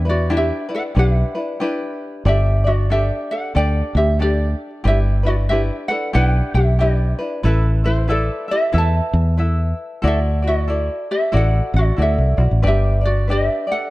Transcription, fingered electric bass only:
Already playing: E2
0.96 B1
2.25 G1
3.56 D2
3.95 D2
4.85 G1
6.15 B1
6.54 B1
7.44 A1
8.74 E2
9.13 E2
10.04 D2
11.34 A1
11.74 A1
11.98 D2
12.18 C2
12.38 B1
12.51 A1
12.63 G1

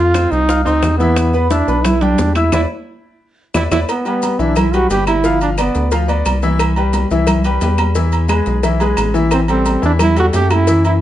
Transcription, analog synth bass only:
Already playing: F2
0.32 C2
0.66 D2
0.83 E2
1.68 B1
2.19 E2
2.53 E2
3.54 E2
3.71 E2
4.39 B1
4.90 G1
5.75 D2
6.26 C2
7.11 C2
7.61 E2
8.47 B1
8.97 A1
9.83 E2
10.34 F#2

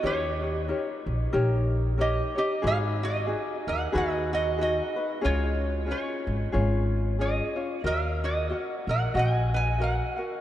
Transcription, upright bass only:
0.04 D#2
1.06 A#1
1.34 A#1
2.64 G#1
3.67 D#2
3.95 D#2
5.25 C#2
6.27 G#1
6.54 G#1
7.84 D#2
8.87 A#1
9.15 A#1

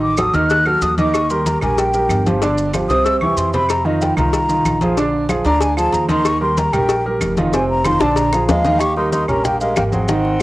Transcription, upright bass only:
Already playing: A1
0.34 D#2
0.82 D#2
1.61 A#1
2.09 G1
2.89 C2
3.37 F2
4.17 C2
4.65 A#1
5.45 D2
5.93 D#2
6.73 A#1
7.21 F1
8.01 A#1
8.48 D#2
9.28 A#1
9.76 G#1

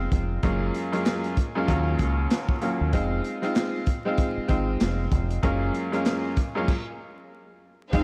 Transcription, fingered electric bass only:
0.12 F1
0.43 F#1
1.69 D#2
2.00 C#2
2.81 D#2
2.93 F1
4.37 muted fingered electric bass stroke
4.49 G#1
4.81 F1
5.12 F1
5.43 F#1
7.93 F1

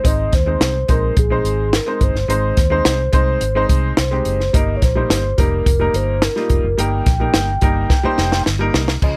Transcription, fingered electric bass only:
0.04 G#1
0.33 D#2
0.60 C2
0.89 A#1
1.17 A#1
1.45 G#1
2.01 G1
2.15 G1
2.28 G#1
2.58 D#2
2.86 C2
3.13 C2
3.41 G#1
3.69 C2
3.98 C2
4.26 F#1
4.54 G1
4.82 A#1
5.10 G1
5.38 F1
5.66 F1
5.94 G1
6.50 F1
6.64 F#1
6.78 G1
7.07 A#1
7.34 G1
7.62 G1
8.04 muted fingered electric bass stroke
8.18 F1
8.47 G1
8.74 C2
9.02 C#2

